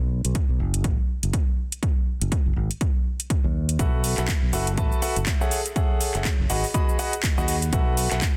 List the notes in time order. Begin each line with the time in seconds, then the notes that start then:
Already playing: B1
0.25 B1, closed hi-hat
0.35 kick, closed hi-hat
0.49 B1
0.60 F#1
0.74 closed hi-hat
0.84 A1, kick, closed hi-hat
1.23 F#1, closed hi-hat
1.33 kick, closed hi-hat
1.72 closed hi-hat
1.83 kick, closed hi-hat
2.21 F#1, closed hi-hat
2.32 kick, closed hi-hat
2.46 F#1
2.56 G#1
2.71 closed hi-hat
2.81 kick, closed hi-hat
3.20 closed hi-hat
3.30 kick, closed hi-hat
3.44 D#2
3.69 closed hi-hat
3.79 B1 F#4 A4 B4 E5 F#5, kick, closed hi-hat, shaker
4.04 open hi-hat, shaker
4.18 B1 F#4 A4 B4 E5 F#5, clap, closed hi-hat, shaker
4.28 kick, clap, closed hi-hat, shaker
4.43 B1
4.53 F#1 F#4 A4 B4 E5 F#5, open hi-hat, shaker
4.67 closed hi-hat, shaker
4.78 A1 F#4 A4 B4 E5 A5, kick, closed hi-hat, shaker
4.92 shaker
5.02 F#4 A4 B4 E5 F#5, open hi-hat, shaker
5.16 F#1, closed hi-hat, shaker
5.26 kick, clap, closed hi-hat, shaker
5.41 G#4 A4 C#5 E5 F#5, shaker
5.51 open hi-hat, shaker
5.66 closed hi-hat, shaker
5.76 G#4 A4 C#5 E5 F#5, kick, closed hi-hat, shaker
6.01 open hi-hat, shaker
6.14 F#1 G#4 A4 C#5 E5 F#5, clap, closed hi-hat, shaker
6.25 kick, clap, closed hi-hat, shaker
6.39 F#1
6.50 G#1 F#4 G#4 B4 D#5 F#5, open hi-hat, shaker
6.64 open hi-hat, shaker
6.74 F#4 G#4 B4 D#5 B5, kick, closed hi-hat, shaker
6.89 shaker
6.99 F#4 G#4 B4 D#5 F#5, open hi-hat, shaker
7.13 closed hi-hat, shaker
7.23 kick, clap, closed hi-hat, shaker
7.38 D#2 F#4 G#4 B4 D#5 F#5, shaker
7.48 open hi-hat, shaker
7.62 closed hi-hat, shaker
7.73 B1 F#4 A4 B4 E5 F#5, kick, closed hi-hat, shaker
7.97 open hi-hat, shaker
8.11 B1 F#4 A4 B4 E5 F#5, clap, closed hi-hat, shaker
8.21 kick, clap, closed hi-hat, shaker